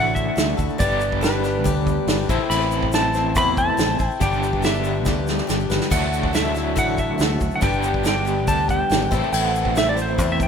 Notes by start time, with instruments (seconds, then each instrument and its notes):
Already playing: fingered electric bass A1, steel-string acoustic guitar D3 A3 E4 F#4 A4, overdriven electric guitar D3 A3 D4 F#4, electric slide guitar F#5
0.15 electric slide guitar E5, kick, open hi-hat, shaker
0.36 fingered electric bass D2, steel-string acoustic guitar A3 E4 F#4 A4, snare, open hi-hat, shaker
0.57 fingered electric bass D2, steel-string acoustic guitar E4 F#4 A4, kick, open hi-hat, shaker
0.70 shaker
0.78 fingered electric bass G1, overdriven electric guitar G2 D3 B3, steel-string acoustic guitar G3 D4 G4 B4, electric slide guitar D5, kick, open hi-hat, shaker
0.91 shaker
1.01 open hi-hat, shaker
1.12 kick
1.21 steel-string acoustic guitar G3 D4 G4 B4, electric slide guitar B4, snare, open hi-hat, shaker
1.44 steel-string acoustic guitar D4 G4 B4, snare, open hi-hat, shaker
1.64 fingered electric bass D2, steel-string acoustic guitar G3 D4 G4 B4, kick, open hi-hat, shaker
1.86 kick, open hi-hat, shaker
2.07 fingered electric bass G1, steel-string acoustic guitar G3 D4 G4 B4, snare, open hi-hat, shaker
2.29 fingered electric bass A1, steel-string acoustic guitar A2 E3 A3 C4 E4 C5, overdriven electric guitar A4, kick, open hi-hat, shaker
2.50 fingered electric bass A1, electric slide guitar B5, crash, shaker
2.61 shaker
2.71 open hi-hat, shaker
2.82 kick
2.92 steel-string acoustic guitar A3 C4 E4, electric slide guitar A5, snare, open hi-hat, shaker
2.96 steel-string acoustic guitar C5
3.14 steel-string acoustic guitar A3 C4 E4 C5, snare, open hi-hat, shaker
3.35 fingered electric bass E2, steel-string acoustic guitar A2 E3 A3 C4 E4 C5, electric slide guitar B5, kick, open hi-hat, shaker
3.57 electric slide guitar A5, kick, open hi-hat, shaker
3.77 fingered electric bass A1, steel-string acoustic guitar A3 C4 E4 C5, snare, open hi-hat, shaker
3.99 fingered electric bass A1, steel-string acoustic guitar A3 C4 E4 C5, kick, open hi-hat, shaker
4.08 electric slide guitar G5, shaker
4.20 fingered electric bass G1, overdriven electric guitar G2 D3 B3, steel-string acoustic guitar G3 D4 G4 B4, electric slide guitar G5, kick, open hi-hat, shaker
4.33 shaker
4.43 open hi-hat, shaker
4.53 kick
4.62 steel-string acoustic guitar G3 D4 G4 B4, electric slide guitar E5, snare, open hi-hat, shaker
4.74 shaker
4.84 steel-string acoustic guitar D4 G4 B4, open hi-hat, shaker
5.05 fingered electric bass D2, steel-string acoustic guitar G3 D4 G4 B4, kick, snare, shaker
5.27 snare, shaker
5.38 snare, shaker
5.47 fingered electric bass G1, steel-string acoustic guitar G3 D4 G4 B4, snare, shaker
5.60 shaker
5.70 fingered electric bass G1, steel-string acoustic guitar D4 G4 B4, snare, shaker
5.81 snare
5.90 fingered electric bass D2, steel-string acoustic guitar D3 A3 E4 F#4 A4, overdriven electric guitar F#3 D4, electric slide guitar F#5, kick, crash, shaker
6.03 shaker
6.12 open hi-hat, shaker
6.23 kick
6.33 steel-string acoustic guitar A3 E4 F#4 A4, electric slide guitar E5, snare, open hi-hat, shaker
6.54 steel-string acoustic guitar E4 F#4 A4, snare, open hi-hat, shaker
6.76 fingered electric bass A1, steel-string acoustic guitar D3 A3 E4 F#4 A4, electric slide guitar F#5, kick, open hi-hat, shaker
6.98 electric slide guitar E5, kick, open hi-hat, shaker
7.18 fingered electric bass D2, steel-string acoustic guitar A3 E4 F#4 A4, snare, open hi-hat, shaker
7.41 fingered electric bass D2, kick, open hi-hat, shaker
7.51 shaker
7.56 electric slide guitar F#5
7.61 fingered electric bass G1, overdriven electric guitar G2 D3 B3, steel-string acoustic guitar G3 D4 G4 B4, electric slide guitar G5, kick, open hi-hat, shaker
7.73 shaker
7.83 open hi-hat, shaker
7.94 kick
8.03 steel-string acoustic guitar G3 D4 G4 B4, snare, open hi-hat, shaker
8.08 electric slide guitar G5
8.25 steel-string acoustic guitar D4 G4 B4, open hi-hat, shaker
8.47 fingered electric bass D2, steel-string acoustic guitar G3 D4 G4 B4, electric slide guitar A5, kick, open hi-hat, shaker
8.69 electric slide guitar G5, kick, open hi-hat, shaker
8.90 fingered electric bass G#1, steel-string acoustic guitar G3 D4 G4 B4, snare, open hi-hat, shaker
9.11 fingered electric bass A1, steel-string acoustic guitar A2 E3 A3 C4 E4 C5, overdriven electric guitar A4, kick, open hi-hat, shaker
9.23 shaker
9.33 fingered electric bass A1, electric slide guitar G5, crash, shaker
9.44 electric slide guitar F#5, shaker
9.55 open hi-hat, shaker
9.65 kick
9.75 steel-string acoustic guitar A3 C4 E4 C5, electric slide guitar E5, snare, open hi-hat, shaker
9.89 electric slide guitar D5
9.97 steel-string acoustic guitar A3 C4 E4 C5, open hi-hat, shaker
10.02 electric slide guitar C5
10.18 fingered electric bass E2, steel-string acoustic guitar A2 E3 A3 C4 E4 C5, kick, open hi-hat, shaker
10.32 electric slide guitar E5
10.40 electric slide guitar G5, kick, open hi-hat, shaker